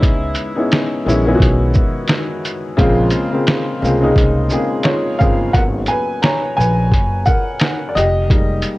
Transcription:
Already playing: upright bass C#2, upright piano G#3 B3 C#4 D#4 E4
0.03 kick, closed hi-hat
0.35 closed hi-hat, shaker
0.56 upright piano G#3 B3 C#4 D#4 E4
0.72 snare, closed hi-hat
1.05 upright bass A#1, upright piano D#3 G#3 B3 C#4 E4, shaker
1.25 upright piano D#3 G#3 B3 C#4 E4
1.35 upright piano F#4
1.40 upright bass B1, kick, closed hi-hat
1.74 kick, shaker
2.08 snare, closed hi-hat
2.45 closed hi-hat, shaker
2.77 upright bass A#1, upright piano C#3 G#3 A#3 C4 F4, kick, closed hi-hat
3.10 closed hi-hat, shaker
3.32 upright piano C#3 G#3 A#3 C4 F4
3.47 snare, closed hi-hat
3.81 upright bass C2, upright piano C#3 G#3 A#3 C4 F4, shaker
4.01 upright piano C#3 G#3 A#3 C4 D#4
4.16 upright bass C2, kick, closed hi-hat
4.50 upright piano C#3 G#3 A#3 C4 G#4, shaker
4.83 upright piano F4 C#5, snare, closed hi-hat
5.19 upright bass G1, upright piano C#3 G#3 A#3 C4 F4 G#4 F5, kick, shaker
5.53 upright bass G#1, upright piano F#3 A#3 B3 C#4 A#4 F#5, kick, closed hi-hat
5.86 upright piano B4 G#5, closed hi-hat, shaker
6.22 upright piano C#5 A#5, snare, closed hi-hat
6.57 upright bass A#1, upright piano B4 G#5, shaker
6.92 upright bass F#1, kick, closed hi-hat
7.26 upright piano A#4 F#5, kick, shaker
7.60 snare, closed hi-hat
7.89 upright piano D5
7.95 upright bass F1, upright piano G4 D#5, closed hi-hat, shaker
8.30 upright piano G3 G#3 A#3 D#4, kick, closed hi-hat
8.62 closed hi-hat, shaker

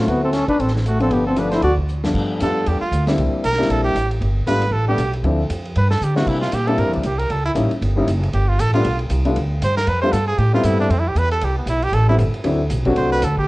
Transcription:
Already playing: grand piano F#3 A3 C4, trombone A3, trumpet F4
0.00 grand piano E4
0.07 upright bass D2, trombone B3, trumpet F#4, ride
0.23 trombone C4, trumpet A4
0.33 trombone C#4, trumpet A4, snare, hi-hat pedal, ride
0.48 trombone D4, trumpet B4, muted upright bass stroke, kick, ride
0.59 upright bass A1, trombone C4, trumpet A4, ride
0.68 snare
0.75 trombone E3, trumpet C4, snare
0.86 trombone A3, trumpet F#4, hi-hat pedal, ride
1.00 grand piano F3 A3 B3 D4, trombone C4, trumpet A4, ride
1.10 upright bass G1, trombone B3, trumpet G4, ride
1.26 trombone C4, trumpet A4
1.36 grand piano F3 A3 B3 D4, trombone D4, trumpet B4, hi-hat pedal, ride
1.50 trombone E4, trumpet C5, snare, ride
1.62 upright bass D2, trombone F#4, trumpet D5, ride
1.77 kick
1.88 hi-hat pedal
2.03 grand piano G2 F3 A3 B3 D4, snare
2.14 upright bass G2, kick, crash
2.40 upright bass F2, grand piano G3 A3 B3 D4 F4, trumpet A4, hi-hat pedal, ride
2.66 upright bass E2, trumpet G4, ride
2.81 trumpet F4, muted upright bass stroke
2.91 upright bass D2, hi-hat pedal, ride
3.07 grand piano G3 A#3 C4 D4 E4, snare, ride
3.18 upright bass C2, ride
3.34 muted upright bass stroke
3.44 upright bass B1, trumpet A#4, hi-hat pedal, ride
3.53 snare
3.58 grand piano G3 A#3 C4 D4 E4, snare
3.69 upright bass A#1, trumpet A4, ride
3.84 trumpet G4
3.95 upright bass A1, hi-hat pedal, ride
4.11 ride
4.21 upright bass G1, ride
4.47 upright bass G#1, grand piano G3 A3 B3 D4 F4, trumpet B4, hi-hat pedal, ride
4.62 ride
4.71 upright bass A1, trumpet A4
4.88 grand piano G3 A3 B3 D4 G4, trumpet G4
4.98 upright bass B1, hi-hat pedal, ride
5.13 ride
5.23 upright bass D2, grand piano F3 A3 C4 D4 E4, ride
5.50 upright bass F2, hi-hat pedal, ride
5.65 ride
5.76 upright bass G2, trumpet B4, ride
5.91 trumpet A4, snare
6.01 upright bass D3, trumpet G4, hi-hat pedal
6.16 grand piano G3 A#3 C4 D4 E4, trumpet F#4, snare
6.27 upright bass C3, trumpet E4, kick, crash
6.41 trumpet F4, snare
6.52 upright bass A#2, trumpet G4, hi-hat pedal, ride
6.67 grand piano G3 A#3 C4 D4 E4, trumpet A4, ride
6.78 upright bass G2, trumpet A#4, ride
6.87 upright bass E2
6.93 upright bass C2, trumpet D4, ride
7.03 upright bass C2, trumpet G4, hi-hat pedal, ride
7.18 trumpet A#4, ride
7.30 upright bass C#2, trumpet A4, ride
7.45 trumpet E4
7.55 upright bass A1, grand piano G3 A#3 C#4 D#4 E4, hi-hat pedal, ride
7.71 muted upright bass stroke, ride
7.81 upright bass G1, ride
7.96 grand piano G3 A#3 C#4 D#4 E4
8.08 upright bass F#1, hi-hat pedal, ride
8.23 ride
8.33 upright bass G1, trumpet G4, ride
8.48 trumpet F4
8.59 upright bass A1, trumpet A4, hi-hat pedal, ride
8.73 grand piano G3 A3 B3 D4 F4, trumpet F4, ride
8.85 upright bass B1, ride
8.99 ride
9.10 upright bass C2, hi-hat pedal, ride
9.25 grand piano G3 A3 B3 D4 F4, ride
9.36 upright bass D2, ride
9.62 upright bass G2, trumpet C5, hi-hat pedal, ride
9.76 trumpet A#4, snare, ride
9.87 upright bass F2, trumpet B4, ride
10.01 grand piano G3 A3 B3 D4 F4, trumpet C5
10.12 upright bass G2, trumpet A4, hi-hat pedal, ride
10.27 trumpet G#4
10.38 upright bass A2, trumpet G4, ride
10.53 grand piano G3 A3 B3 C4 E4, trumpet F4
10.63 upright bass G2, trumpet E4, hi-hat pedal, ride
10.80 trumpet D4
10.90 upright bass F2, trumpet C4, ride
10.99 trumpet E4
11.08 trumpet G4
11.15 upright bass E2, trumpet B4, hi-hat pedal, ride
11.31 trumpet A4, ride
11.41 upright bass C2, trumpet G4, ride
11.58 trumpet B3
11.66 upright bass B1, trumpet E4, hi-hat pedal, ride
11.82 trumpet G4, ride
11.92 upright bass A1, trumpet A4, ride
12.08 grand piano G3 A3 B3 C4 E4, trumpet E4
12.18 upright bass G1, hi-hat pedal, ride
12.34 ride
12.44 upright bass D2, grand piano F#3 A3 C4 D4 E4, ride
12.70 upright bass B1, hi-hat pedal, ride
12.85 grand piano F#3 A3 C4 D4 F#4, kick, ride
12.96 upright bass C2, trumpet C5, ride
13.12 trumpet B4
13.22 upright bass D2, trumpet A4, hi-hat pedal, ride
13.38 trumpet G4, kick

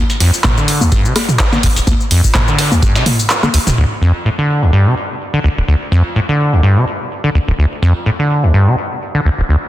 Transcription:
0.10 closed hi-hat, shaker
0.20 acid bass F2, snare, open hi-hat, tambourine
0.34 shaker
0.44 acid bass A2, kick, snare, clap, mid tom, tambourine, high conga, shaker
0.57 acid bass D3, shaker
0.68 open hi-hat, tambourine
0.81 acid bass D2, high conga, shaker
0.92 acid bass G2, kick, tambourine, shaker
1.05 acid bass C3, shaker
1.16 cross-stick, snare, open hi-hat, tambourine, high conga
1.29 mid tom, shaker
1.39 kick, snare, clap, tambourine, shaker
1.53 acid bass D3, snare, high conga, shaker
1.63 acid bass D2, kick, open hi-hat, tambourine
1.76 acid bass D1, closed hi-hat, shaker
1.87 acid bass D2, kick, tambourine, high conga, shaker
2.00 shaker
2.11 acid bass F2, open hi-hat, tambourine
2.24 kick, shaker
2.34 acid bass A2, kick, snare, clap, mid tom, tambourine, high conga, shaker
2.48 acid bass D3, shaker
2.58 snare, open hi-hat, tambourine
2.72 acid bass D2, high conga, shaker
2.82 acid bass G2, kick, tambourine, shaker
2.95 acid bass C3, snare, tambourine, shaker
3.06 mid tom, open hi-hat, high conga
3.19 tambourine, shaker
3.30 snare, clap, tambourine, shaker
3.43 acid bass D3, cross-stick, high conga, shaker
3.54 acid bass D2, open hi-hat, tambourine
3.67 acid bass D1, snare, mid tom, shaker
3.78 acid bass D2
4.02 acid bass F2
4.25 acid bass A2
4.38 acid bass D3
4.62 acid bass D2
4.73 acid bass G2
4.86 acid bass C3
5.33 acid bass D3
5.44 acid bass D2
5.57 acid bass D1
5.68 acid bass D2
5.92 acid bass F2
6.16 acid bass A2
6.29 acid bass D3
6.53 acid bass D2
6.63 acid bass G2
6.76 acid bass C3
7.24 acid bass D3
7.35 acid bass D2
7.48 acid bass D1
7.59 acid bass D2
7.82 acid bass F2
8.06 acid bass A2
8.19 acid bass D3
8.43 acid bass D2
8.54 acid bass G2
8.67 acid bass C3
9.15 acid bass D3
9.25 acid bass D2
9.38 acid bass D1
9.49 acid bass D2

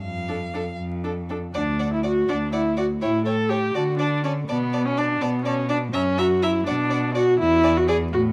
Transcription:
0.02 cello F2, violin F5
0.28 viola D4, violin A4
0.54 viola D4, violin A4
0.78 cello F2
1.04 viola D4, violin A4
1.29 viola D4, violin A4
1.54 cello D2, viola D4, violin D5 F#5
1.79 violin D5 F#5
1.93 viola E4
2.03 viola F#4, violin D5 F#5
2.28 cello D2, viola D4, violin D5 F#5
2.53 viola E4, violin D5 F#5
2.77 viola F#4, violin D5 F#5
3.01 cello A2, viola E4, violin C#5 G5
3.26 viola A4, violin C#5 G5
3.50 viola G4, violin C#5 G5
3.74 cello D3, viola F#4, violin D5 A5
3.99 viola D4, violin D5 A5
4.24 viola C#4, violin D5 A5
4.48 cello B2, viola B3, violin D5 A5
4.73 violin D5 A5
4.85 viola C#4
4.97 viola D4, violin D5 A5
5.21 cello B2, viola B3, violin D5 A5
5.45 viola C#4, violin D5 A5
5.69 viola D4, violin D5 A5
5.93 cello F#2, viola C#4, violin E5 A#5
6.18 viola F#4, violin E5 A#5
6.42 viola E4, violin E5 A#5
6.67 cello B2, viola D4, violin D5 F#5
6.90 violin D5 F#5
7.15 viola F#4, violin D5 F#5
7.39 cello E2, viola E4
7.63 violin D5 G#5
7.77 viola F#4
7.88 viola G#4, violin D5 G#5
8.12 cello A2, viola F#4

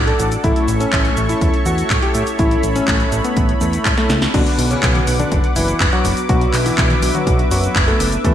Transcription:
Already playing: analog synth bass A1, analog polysynth A3 D4 F#4 A4, analog synth pad A4 D5 F#5 D6
0.07 electric grand piano A4, closed hi-hat
0.19 analog synth bass A1, closed hi-hat, cabasa
0.32 closed hi-hat, cabasa
0.44 analog synth bass A1, analog polysynth A3 C#4 E4 A4, electric grand piano E4, analog synth pad C#5 E5 C#6, kick, closed hi-hat, cabasa
0.56 closed hi-hat
0.68 analog synth bass A1, closed hi-hat, cabasa
0.80 electric grand piano C#4, closed hi-hat, cabasa
0.93 analog synth bass A1, kick, clap, closed hi-hat, cabasa
1.05 closed hi-hat
1.17 analog synth bass A1, analog polysynth A3 C#4 E4 A4, closed hi-hat, cabasa
1.29 electric grand piano E4, closed hi-hat, cabasa
1.41 analog synth bass E2, kick, closed hi-hat, cabasa
1.54 closed hi-hat
1.66 analog synth bass E2, electric grand piano F#4, closed hi-hat, cabasa
1.78 closed hi-hat, cabasa
1.90 analog synth bass A2, kick, clap, closed hi-hat, cabasa
2.02 electric grand piano G4, closed hi-hat
2.15 analog synth bass A2, closed hi-hat, cabasa
2.27 closed hi-hat, cabasa
2.39 analog synth bass A1, analog polysynth A3 C#4 E4 A4, electric grand piano E4, analog synth pad B5, kick, closed hi-hat, cabasa
2.51 closed hi-hat
2.63 analog synth bass A1, closed hi-hat, cabasa
2.76 electric grand piano C#4, closed hi-hat, cabasa
2.88 analog synth bass A1, kick, clap, closed hi-hat, cabasa
3.00 closed hi-hat
3.12 analog synth bass A1, analog polysynth A3 C#4 E4 A4, closed hi-hat, cabasa
3.24 electric grand piano B3, closed hi-hat, cabasa
3.37 analog synth bass A1, kick, closed hi-hat, cabasa
3.49 closed hi-hat
3.61 analog synth bass E2, electric grand piano A3, closed hi-hat, cabasa
3.73 closed hi-hat, cabasa
3.85 analog synth bass A2, kick, clap, closed hi-hat, cabasa
3.98 electric grand piano A3, snare, closed hi-hat
4.10 analog synth bass C#2, snare, closed hi-hat, cabasa
4.22 snare, closed hi-hat, cabasa
4.34 analog synth bass B1, electric grand piano D3 D4, analog polysynth B3 F#4 B4, analog synth pad B4 F#5 D6, kick, closed hi-hat, crash, cabasa
4.46 open hi-hat
4.58 analog synth bass B1, open hi-hat, cabasa
4.71 electric grand piano C#3 C#4, closed hi-hat, cabasa
4.83 analog synth bass B1, kick, clap, closed hi-hat, cabasa
4.95 closed hi-hat, high tom
5.07 analog synth bass B1, analog polysynth B3 D4 F#4 B4, open hi-hat, cabasa
5.20 electric grand piano D3 D4, closed hi-hat, high tom, cabasa
5.32 analog synth bass F#1, kick, closed hi-hat, cabasa
5.44 closed hi-hat
5.56 analog synth bass F#1, electric grand piano E3 E4, open hi-hat, cabasa
5.68 closed hi-hat, cabasa
5.80 analog synth bass F#1, kick, clap, closed hi-hat, cabasa
5.93 electric grand piano F#3 F#4, closed hi-hat
6.05 analog synth bass F#1, open hi-hat, cabasa
6.17 closed hi-hat, cabasa
6.29 analog synth bass B1, electric grand piano F#3 F#4, analog polysynth B3 D4 F#4 B4, analog synth pad E5, kick, closed hi-hat, cabasa
6.41 closed hi-hat
6.54 analog synth bass B1, clap, open hi-hat, cabasa
6.66 electric grand piano E3 E4, open hi-hat, cabasa
6.78 analog synth bass B1, kick, clap, closed hi-hat, cabasa
6.90 closed hi-hat, high tom
7.02 analog synth bass B1, analog polysynth B3 D4 F#4 B4, open hi-hat, cabasa
7.15 electric grand piano F#3 F#4, closed hi-hat, high tom, cabasa
7.27 analog synth bass B1, kick, closed hi-hat, cabasa
7.39 closed hi-hat
7.51 analog synth bass F#1, electric grand piano F#3 F#4, open hi-hat, cabasa
7.64 closed hi-hat, cabasa
7.76 analog synth bass F#1, kick, clap, closed hi-hat, cabasa
7.88 electric grand piano A3 A4, closed hi-hat
8.00 analog synth bass F#1, open hi-hat, cabasa
8.12 closed hi-hat, cabasa
8.24 analog synth bass E2, electric grand piano A3 A4, analog polysynth B3 E4 G4 B4, analog synth pad B5 E6, kick, closed hi-hat, cabasa

